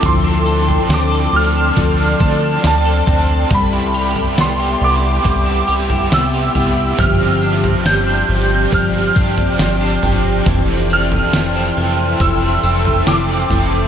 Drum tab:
TB |x-x-x---x-x-x-x-|x-x-x---x-x-x-x-|x-x-x---x-x-x-x-|x-x-x---x-x-x-x-|
SD |----o-------o---|----o-------o---|----o-------o---|----o-------o---|
FT |o--o----o-----o-|o--o----o--o--o-|o--o----o--o--o-|o--o----o--o--o-|
BD |--------o-o---o-|o-------o-------|--------o-o-----|o-------o-------|